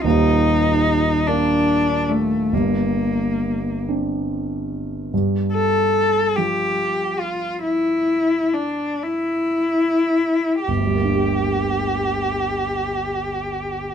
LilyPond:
<<
  \new Staff \with { instrumentName = "Cello" } { \time 6/8 \key g \minor \tempo 4. = 46 ees'4. d'4 a8 | bes4. r4. | r8 a'4 g'4 f'8 | e'4 d'8 e'4. |
g'2. | }
  \new Staff \with { instrumentName = "Grand piano" } { \clef bass \time 6/8 \key g \minor <ees,, ees,>4. <bes d'>4. | <g,, g,>4. <c' d'>4. | g,4. f4.~ | f2. |
<g,, d, g bes d' g'>2. | }
>>